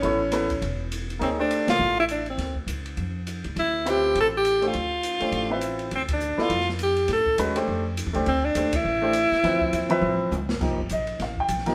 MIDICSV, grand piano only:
0, 0, Header, 1, 2, 480
1, 0, Start_track
1, 0, Tempo, 293974
1, 51, Time_signature, 4, 2, 24, 8
1, 19180, End_track
2, 0, Start_track
2, 0, Title_t, "Grand piano"
2, 0, Program_c, 0, 0
2, 37, Note_on_c, 0, 59, 72
2, 52, Note_on_c, 0, 64, 59
2, 63, Note_on_c, 0, 69, 54
2, 80, Note_on_c, 0, 73, 79
2, 301, Note_off_c, 0, 59, 0
2, 309, Note_off_c, 0, 64, 0
2, 314, Note_off_c, 0, 69, 0
2, 323, Note_off_c, 0, 73, 0
2, 521, Note_on_c, 0, 59, 64
2, 527, Note_on_c, 0, 64, 50
2, 543, Note_on_c, 0, 69, 56
2, 547, Note_on_c, 0, 71, 71
2, 783, Note_off_c, 0, 59, 0
2, 786, Note_off_c, 0, 64, 0
2, 794, Note_off_c, 0, 69, 0
2, 796, Note_off_c, 0, 71, 0
2, 1949, Note_on_c, 0, 58, 58
2, 1962, Note_on_c, 0, 63, 56
2, 1969, Note_on_c, 0, 68, 57
2, 1987, Note_on_c, 0, 73, 64
2, 2217, Note_off_c, 0, 58, 0
2, 2223, Note_off_c, 0, 63, 0
2, 2226, Note_off_c, 0, 68, 0
2, 2236, Note_off_c, 0, 73, 0
2, 2247, Note_on_c, 0, 57, 53
2, 2260, Note_on_c, 0, 62, 60
2, 2273, Note_on_c, 0, 67, 60
2, 2282, Note_on_c, 0, 72, 73
2, 3289, Note_off_c, 0, 57, 0
2, 3295, Note_off_c, 0, 62, 0
2, 3302, Note_off_c, 0, 67, 0
2, 3306, Note_off_c, 0, 72, 0
2, 6295, Note_on_c, 0, 60, 67
2, 6306, Note_on_c, 0, 65, 50
2, 6318, Note_on_c, 0, 71, 57
2, 6330, Note_on_c, 0, 76, 65
2, 7003, Note_off_c, 0, 60, 0
2, 7008, Note_off_c, 0, 65, 0
2, 7014, Note_off_c, 0, 71, 0
2, 7020, Note_off_c, 0, 76, 0
2, 7532, Note_on_c, 0, 57, 64
2, 7542, Note_on_c, 0, 62, 51
2, 7549, Note_on_c, 0, 67, 59
2, 7560, Note_on_c, 0, 72, 68
2, 7710, Note_off_c, 0, 57, 0
2, 7715, Note_off_c, 0, 62, 0
2, 7718, Note_off_c, 0, 67, 0
2, 7724, Note_off_c, 0, 72, 0
2, 8491, Note_on_c, 0, 57, 59
2, 8509, Note_on_c, 0, 67, 51
2, 8514, Note_on_c, 0, 62, 56
2, 8525, Note_on_c, 0, 72, 69
2, 8947, Note_off_c, 0, 57, 0
2, 8956, Note_off_c, 0, 67, 0
2, 8958, Note_off_c, 0, 62, 0
2, 8964, Note_off_c, 0, 72, 0
2, 8979, Note_on_c, 0, 60, 61
2, 8999, Note_on_c, 0, 65, 55
2, 9004, Note_on_c, 0, 71, 53
2, 9014, Note_on_c, 0, 76, 69
2, 9615, Note_off_c, 0, 60, 0
2, 9625, Note_off_c, 0, 65, 0
2, 9627, Note_off_c, 0, 71, 0
2, 9632, Note_off_c, 0, 76, 0
2, 10413, Note_on_c, 0, 59, 63
2, 10423, Note_on_c, 0, 64, 64
2, 10433, Note_on_c, 0, 69, 63
2, 10438, Note_on_c, 0, 74, 77
2, 10591, Note_off_c, 0, 59, 0
2, 10597, Note_off_c, 0, 64, 0
2, 10601, Note_off_c, 0, 69, 0
2, 10604, Note_off_c, 0, 74, 0
2, 12052, Note_on_c, 0, 56, 68
2, 12059, Note_on_c, 0, 61, 64
2, 12070, Note_on_c, 0, 66, 61
2, 12074, Note_on_c, 0, 71, 71
2, 12311, Note_off_c, 0, 56, 0
2, 12314, Note_off_c, 0, 61, 0
2, 12320, Note_off_c, 0, 66, 0
2, 12322, Note_off_c, 0, 71, 0
2, 12332, Note_on_c, 0, 57, 70
2, 12338, Note_on_c, 0, 62, 57
2, 12345, Note_on_c, 0, 67, 60
2, 12359, Note_on_c, 0, 72, 79
2, 12759, Note_off_c, 0, 57, 0
2, 12762, Note_off_c, 0, 62, 0
2, 12766, Note_off_c, 0, 67, 0
2, 12773, Note_off_c, 0, 72, 0
2, 13278, Note_on_c, 0, 57, 67
2, 13298, Note_on_c, 0, 62, 69
2, 13308, Note_on_c, 0, 67, 68
2, 13317, Note_on_c, 0, 72, 68
2, 13464, Note_off_c, 0, 57, 0
2, 13474, Note_off_c, 0, 62, 0
2, 13479, Note_off_c, 0, 67, 0
2, 13484, Note_off_c, 0, 72, 0
2, 13959, Note_on_c, 0, 57, 52
2, 13976, Note_on_c, 0, 62, 53
2, 13986, Note_on_c, 0, 67, 54
2, 13994, Note_on_c, 0, 72, 60
2, 14225, Note_off_c, 0, 57, 0
2, 14233, Note_off_c, 0, 62, 0
2, 14238, Note_off_c, 0, 67, 0
2, 14242, Note_off_c, 0, 72, 0
2, 14718, Note_on_c, 0, 57, 64
2, 14728, Note_on_c, 0, 62, 67
2, 14742, Note_on_c, 0, 67, 58
2, 14749, Note_on_c, 0, 72, 79
2, 14904, Note_off_c, 0, 57, 0
2, 14909, Note_off_c, 0, 62, 0
2, 14916, Note_off_c, 0, 67, 0
2, 14919, Note_off_c, 0, 72, 0
2, 15406, Note_on_c, 0, 60, 61
2, 15414, Note_on_c, 0, 53, 61
2, 15425, Note_on_c, 0, 71, 55
2, 15430, Note_on_c, 0, 76, 66
2, 16118, Note_off_c, 0, 60, 0
2, 16123, Note_off_c, 0, 53, 0
2, 16128, Note_off_c, 0, 71, 0
2, 16131, Note_off_c, 0, 76, 0
2, 16154, Note_on_c, 0, 60, 80
2, 16169, Note_on_c, 0, 53, 81
2, 16174, Note_on_c, 0, 71, 81
2, 16191, Note_on_c, 0, 76, 89
2, 16802, Note_off_c, 0, 60, 0
2, 16809, Note_off_c, 0, 53, 0
2, 16812, Note_off_c, 0, 71, 0
2, 16820, Note_off_c, 0, 76, 0
2, 17321, Note_on_c, 0, 53, 60
2, 17328, Note_on_c, 0, 58, 50
2, 17335, Note_on_c, 0, 63, 51
2, 17345, Note_on_c, 0, 67, 58
2, 17585, Note_off_c, 0, 53, 0
2, 17588, Note_off_c, 0, 58, 0
2, 17591, Note_off_c, 0, 63, 0
2, 17596, Note_off_c, 0, 67, 0
2, 17837, Note_on_c, 0, 75, 60
2, 18272, Note_off_c, 0, 75, 0
2, 18325, Note_on_c, 0, 77, 66
2, 18587, Note_off_c, 0, 77, 0
2, 18617, Note_on_c, 0, 79, 80
2, 19042, Note_on_c, 0, 53, 70
2, 19053, Note_on_c, 0, 58, 64
2, 19063, Note_on_c, 0, 63, 59
2, 19072, Note_on_c, 0, 67, 75
2, 19180, Note_off_c, 0, 53, 0
2, 19180, Note_off_c, 0, 58, 0
2, 19180, Note_off_c, 0, 63, 0
2, 19180, Note_off_c, 0, 67, 0
2, 19180, Note_off_c, 0, 79, 0
2, 19180, End_track
0, 0, End_of_file